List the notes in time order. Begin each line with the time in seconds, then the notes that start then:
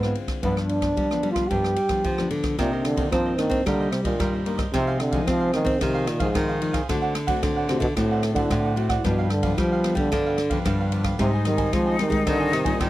Already playing: G#2 D3 B3
0.03 G#3 C4 F4, cross-stick
0.15 ride
0.28 kick, cross-stick, ride
0.43 G2 F3 B3 D4, kick, ride
0.57 cross-stick
0.68 D4, ride
0.82 F3 B3 D4, kick, cross-stick, ride
0.97 D3 G3, kick, ride
1.11 F3 B3 D4, cross-stick
1.23 G3, ride
1.31 F4
1.36 F3 B3 D4, kick, cross-stick, ride
1.49 G2 F3 B3 D4 G4, kick, ride
1.64 cross-stick
1.76 G3, ride
1.89 F3 B3 D4, kick, cross-stick, ride
2.04 D3 F3, kick, ride
2.18 F3 B3 D4, cross-stick
2.30 D3, ride
2.43 kick, cross-stick, ride
2.58 A#2 C3 D#3 A#3 D4 D#4 A#4 C5 D#5, kick, cross-stick, ride
2.72 A#4 C5 D#5
2.84 D3, muted cavaquinho stroke, cross-stick, ride
2.96 D#3 A#3 D4 A#4 C5 D#5, kick, ride
3.11 G2 F3 C4 D#4 A#4 C5 D#5, kick, cross-stick, ride
3.26 A#4 C5 D#5
3.38 D#3 A#3 D4, cross-stick, ride
3.50 C4, kick, ride
3.65 C3 D3 D#3 G3 A#3 D4 D#4 A#4 C5 D#5, kick, cross-stick, ride
3.80 A#4 C5 D#5
3.91 C3, muted cavaquinho stroke, cross-stick, ride
4.04 A#2 D#3 A#3 D4 A#4 C5 D#5, kick, ride
4.19 G2 G3 D#4 A#4 C5 D#5, kick, cross-stick, ride
4.33 A#4 C5 D#5
4.46 D#3 A#3 D4 D#4 A#4 C5 D#5, ride
4.58 A#4 C5 D#5, kick, cross-stick, ride
4.74 C3 F3 G#3 D#4 F4 G#4 C5 F5, kick, cross-stick, ride
4.87 G#4 C5 F5
5.00 D3, muted cavaquinho stroke, cross-stick, ride
5.12 F3 G#3 D#4 G#4 C5 F5, kick, ride
5.26 C3 F3 C4 F4 G#4 C5 F5, kick, cross-stick, ride
5.40 G#4 C5 F5
5.53 D#3 F3 G#3 D#4, cross-stick, ride
5.65 C4, kick, ride
5.81 C3 D#3 F3 G#3 D#4 F4 G#4 C5 F5, kick, cross-stick, ride
5.94 G#4 C5 F5
6.07 A#2, muted cavaquinho stroke, cross-stick, ride
6.20 G#2 F3 G#3 D#4 G#4 C5 F5, kick, ride
6.34 C3 D#3 F4 G#4 C5 F5, kick, cross-stick, ride
6.49 G#4 C5 F5
6.61 F3 G#3 D#4 F4 G#4 C5 F5, ride
6.73 G#4 C5 F5, kick, cross-stick, ride
6.88 D3 A3 C4 D4 F#4 C5 D5 F#5, kick, cross-stick, ride
7.02 C5 D5 F#5
7.14 muted cavaquinho stroke, cross-stick, ride
7.27 A3 C4 F#4 C5 D5 F#5, kick, ride
7.43 A2 D3 D4 C5 D5 F#5, kick, cross-stick, ride
7.56 C5 D5 F#5
7.69 C3 A3 C4 F#4, cross-stick, ride
7.80 B2 D3, kick, ride
7.96 A2 D3 A3 C4 D4 F#4 C5 D5 F#5, kick, cross-stick, ride
8.11 C5 D5 F#5
8.23 cross-stick, ride
8.35 D3 A3 C4 F#4 C5 D5 F#5, kick, ride
8.50 A2 D4 C5 D5 F#5, kick, cross-stick, ride
8.65 C5 D5 F#5
8.76 A3 C4 D4 F#4 C5 D5 F#5, ride
8.89 C5 D5 F#5, kick, cross-stick, ride
9.04 G2 B2 F3 B3 D4 G4 B4 F5, kick, cross-stick, ride
9.18 G4 B4 F5
9.30 D3, muted cavaquinho stroke, cross-stick, ride
9.43 F3 B3 D4 G4 B4 F5, kick, ride
9.57 D3 F3 G3 D4 G4 B4 F5, kick, cross-stick, ride
9.72 G4 B4 F5
9.84 F3 B3 D4, cross-stick, ride
9.95 D3 G3, kick, ride
10.11 G2 D3 F3 B3 D4 G4 B4 F5, kick, cross-stick, ride
10.26 G4 B4 F5
10.38 muted cavaquinho stroke, cross-stick, ride
10.50 F3 B3 D4 G4 B4 F5, kick, ride
10.65 G2 D3 D4 G4 B4 F5, kick, cross-stick, ride
10.80 G4 B4 F5
10.91 F3 B3 D4 G4 B4 F5, ride
11.04 G4 B4 F5, kick, cross-stick, ride
11.19 G#2 C3 G3 C4 D#4 G4 C5 D#5 G#5, kick, cross-stick, ride
11.33 C5 D#5 G#5
11.45 D#3 G3 C4 D#4, muted cavaquinho stroke, cross-stick, ride
11.57 C5 D#5 G#5, kick, ride
11.72 D#3 F3 G3 G#3 C4 D#4 G4 C5 D#5 G#5, kick, cross-stick, ride
11.86 C5 D#5 G#5
11.99 D#3 G3 C4 D#4, cross-stick, ride
12.10 G#3, kick, ride
12.25 G#2 D3 D#3 G3 C4 D#4 G4 C5 D#5 G#5, kick, cross-stick, ride
12.40 C5 D#5 G#5
12.52 C3, muted cavaquinho stroke, cross-stick, ride
12.64 A#2 G3 C4 D#4 C5 D#5 G#5, kick, ride
12.79 D#3 G4 C5 D#5 G#5, kick, cross-stick, ride